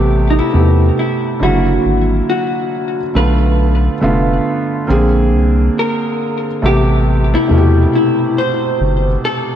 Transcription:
Already playing: analog synth bass A1, felt piano C3 A3 B3 G4 C5, hollow-body jazz guitar G4
0.30 hollow-body jazz guitar D#4
0.39 hollow-body jazz guitar E4
0.52 analog synth bass E2, felt piano C3 A3 B3 G4
0.99 hollow-body jazz guitar E4
1.39 analog synth bass F#1, felt piano D3 F#3 G#3 E4, hollow-body jazz guitar F#4
1.48 felt piano A#3
1.85 analog synth bass G#1
2.29 hollow-body jazz guitar F#4
3.14 analog synth bass B1, felt piano D3 A3 B3 F4, hollow-body jazz guitar B4
4.00 analog synth bass F1, felt piano D3 A3 B3 F4
4.87 analog synth bass A#1, felt piano D3 A#3 C4 G#4
5.33 analog synth bass C2
5.79 hollow-body jazz guitar A#4
6.62 analog synth bass A1, felt piano C3 A3 B3 G4, hollow-body jazz guitar G4
7.35 hollow-body jazz guitar E4
7.48 analog synth bass E2, felt piano B2 C3 A3 F#4
7.58 felt piano G4
7.95 hollow-body jazz guitar E4
8.38 hollow-body jazz guitar C5
8.81 analog synth bass G1
9.25 hollow-body jazz guitar A4

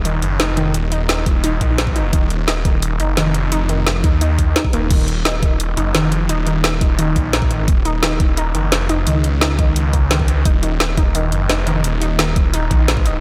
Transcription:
Already playing: detuned saw bass D#1
0.05 synth arpeggio sound D#3, closed hi-hat
0.22 detuned saw bass F#1, closed hi-hat
0.40 detuned saw bass F1, synth arpeggio sound D#4, snare, closed hi-hat
0.57 synth arpeggio sound D#3, closed hi-hat
0.74 detuned saw bass D#1, closed hi-hat
0.92 synth arpeggio sound D#4, closed hi-hat
1.09 synth arpeggio sound D#3, snare, closed hi-hat
1.26 kick, closed hi-hat
1.44 synth arpeggio sound D#4, closed hi-hat
1.61 detuned saw bass A#1, synth arpeggio sound D#3, kick, closed hi-hat
1.78 snare, closed hi-hat
1.87 kick
1.96 synth arpeggio sound D#4, closed hi-hat
2.13 detuned saw bass D#1, synth arpeggio sound D#3, kick, closed hi-hat
2.30 closed hi-hat
2.48 synth arpeggio sound D#4, snare, closed hi-hat
2.65 synth arpeggio sound D#3, kick, closed hi-hat
2.82 closed hi-hat
3.00 detuned saw bass F#1, synth arpeggio sound D#4, closed hi-hat
3.17 detuned saw bass F1, synth arpeggio sound D#3, snare, closed hi-hat
3.35 closed hi-hat
3.52 detuned saw bass F1, synth arpeggio sound D#4, closed hi-hat
3.69 synth arpeggio sound D#3, closed hi-hat
3.87 snare, closed hi-hat
4.04 detuned saw bass D#2, synth arpeggio sound D#4, kick, closed hi-hat
4.21 synth arpeggio sound D#3, closed hi-hat
4.39 kick, closed hi-hat
4.56 synth arpeggio sound D#4, snare, closed hi-hat
4.65 kick
4.73 detuned saw bass D#1, synth arpeggio sound A#3, closed hi-hat
4.91 detuned saw bass D#1, synth arpeggio sound D#3, kick, closed hi-hat, crash
5.08 closed hi-hat
5.25 synth arpeggio sound D#4, snare, closed hi-hat
5.43 synth arpeggio sound D#3, kick, closed hi-hat
5.60 closed hi-hat
5.77 detuned saw bass F#1, synth arpeggio sound D#4, closed hi-hat
5.95 detuned saw bass F1, synth arpeggio sound D#3, snare, closed hi-hat
6.12 closed hi-hat
6.29 detuned saw bass D#1, synth arpeggio sound D#4, closed hi-hat
6.47 synth arpeggio sound D#3, closed hi-hat
6.64 snare, closed hi-hat
6.81 synth arpeggio sound D#4, kick, closed hi-hat
6.99 synth arpeggio sound D#3, closed hi-hat
7.16 detuned saw bass A#1, kick, closed hi-hat
7.33 synth arpeggio sound D#4, snare, closed hi-hat
7.42 kick
7.51 synth arpeggio sound D#3, closed hi-hat
7.68 detuned saw bass D#1, kick, closed hi-hat
7.85 synth arpeggio sound D#4, closed hi-hat
8.03 synth arpeggio sound D#3, snare, closed hi-hat
8.20 kick, closed hi-hat
8.37 synth arpeggio sound D#4, closed hi-hat
8.55 detuned saw bass F#1, synth arpeggio sound D#3, closed hi-hat
8.72 detuned saw bass F1, snare, closed hi-hat
8.89 synth arpeggio sound D#4, closed hi-hat
9.07 detuned saw bass C#2, synth arpeggio sound D#3, closed hi-hat
9.24 closed hi-hat
9.41 synth arpeggio sound D#4, snare, closed hi-hat
9.59 synth arpeggio sound D#3, kick, closed hi-hat
9.76 closed hi-hat
9.93 synth arpeggio sound A#3, kick, closed hi-hat
10.11 synth arpeggio sound D#3, snare, closed hi-hat
10.19 kick
10.28 closed hi-hat
10.45 detuned saw bass D#1, synth arpeggio sound D#4, kick, closed hi-hat
10.63 synth arpeggio sound D#3, closed hi-hat
10.80 snare, closed hi-hat
10.97 synth arpeggio sound D#4, kick, closed hi-hat
11.15 synth arpeggio sound D#3, closed hi-hat
11.32 detuned saw bass F#1, closed hi-hat
11.49 detuned saw bass F1, synth arpeggio sound D#4, snare, closed hi-hat
11.67 synth arpeggio sound D#3, closed hi-hat
11.84 detuned saw bass D#1, closed hi-hat
12.02 synth arpeggio sound D#4, closed hi-hat
12.19 synth arpeggio sound D#3, snare, closed hi-hat
12.36 kick, closed hi-hat
12.54 synth arpeggio sound D#4, closed hi-hat
12.71 detuned saw bass A#1, synth arpeggio sound D#3, kick, closed hi-hat
12.88 snare, closed hi-hat
12.97 kick
13.06 synth arpeggio sound D#4, closed hi-hat

